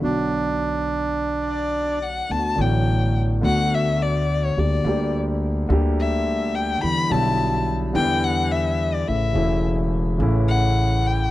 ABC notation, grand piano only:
X:1
M:4/4
L:1/8
Q:1/4=106
K:Bm
V:1 name="Grand piano" clef=bass
[B,,,B,,D,F,B,F]8 | [K:D] [D,,D,A,B,F] [A,,,A,,D,F,A,B,]3 [D,,D,A,B,F]4 | [D,,D,G,_B,G] [D,,D,G,B,G]3 [D,,D,G,B,G]4 | [E,,D,E,G,B,E] [B,,,B,,D,G,B,E]3 [E,,D,E,G,B,E]4 |
[A,,,A,,C,E,A,E] [E,,,E,,C,E,A,E]3 [A,,,A,,C,E,A,E]4 |]